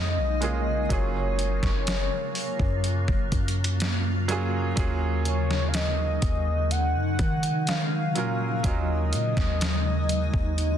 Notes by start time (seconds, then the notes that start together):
Already playing: F2 C#3 G#3 A#3 D#4 D#5
0.18 B1
0.41 G#3 A#3 C#4 F4 G#4, closed hi-hat
0.89 F#1 F#3 A#3 C#4 F4 G#4 C#5, kick, closed hi-hat
1.39 closed hi-hat
1.63 F#1, kick, snare
1.87 snare, closed hi-hat
2.35 open hi-hat
2.59 F#2, kick
2.84 F4, closed hi-hat
3.08 F#1, kick
3.32 F#2, kick, closed hi-hat
3.48 closed hi-hat
3.64 closed hi-hat
3.80 snare, closed hi-hat
4.28 F#3 A#3 C#4 F4 G#4, closed hi-hat
4.76 D#2 F#3 G#3 A#3 C#4 D#4 F4 G#4, kick, closed hi-hat
5.25 C#5, closed hi-hat
5.51 snare
5.68 F5
5.74 D#5, snare, closed hi-hat
6.22 D#2, kick, closed hi-hat
6.71 F#5, closed hi-hat
6.95 F#2
7.19 D#3, kick, closed hi-hat
7.43 closed hi-hat
7.67 F5, snare, closed hi-hat
8.15 A#2 F#3 A#3 C#4 F4 A#4, closed hi-hat
8.63 D#2 F#3 A#3 C#4 D#4 F4 A#4 D#5, kick, closed hi-hat
9.13 A#2, closed hi-hat
9.37 D#2, kick, snare
9.61 snare, closed hi-hat
10.09 closed hi-hat
10.34 D#2, kick
10.58 closed hi-hat